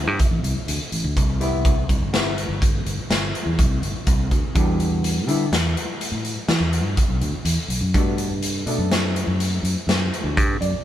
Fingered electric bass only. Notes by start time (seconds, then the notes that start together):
0.07 G2
0.31 A1
0.43 C2
0.68 D2
0.92 A1
1.04 D2
1.16 C2
1.89 C2
2.01 G1
2.49 G1
2.85 G1
3.10 G1
3.46 E2
3.58 C2
3.82 G1
4.07 C2
4.31 D2
4.55 E2
5.27 D3
5.52 E2
6.12 A2
6.48 E3
6.60 E2
6.84 G2
7.08 B1
7.21 D2
7.45 E2
7.68 B1
7.81 F#2
7.94 G2
8.66 B2
8.78 F#2
9.27 F#2
9.63 F#2
9.87 F#2
10.24 D2
10.37 G2
10.61 F#2